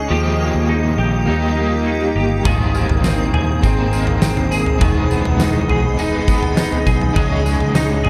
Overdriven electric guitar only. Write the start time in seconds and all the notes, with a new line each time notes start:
Already playing: C#4 D#4 C#5
0.08 D#3 F3 A#3
0.13 D#4 G4 D#5
1.26 A#3 D#4 G4
1.31 D#5
1.56 D#4 G4 D#5
1.61 A#3
2.44 G#2 D#3 A#3
2.49 C4 D#4 C5
3.62 A#3 C4 D#4
3.67 C5
3.92 C4 D#4 C5
3.96 A#3
4.79 E3 G#3
4.83 B3 D#4 B4
5.97 G#3 B3 D#4
6.02 B4
6.26 D#4 B4
6.31 B3
7.13 C#3 G#3
7.18 C#4 D#4 C#5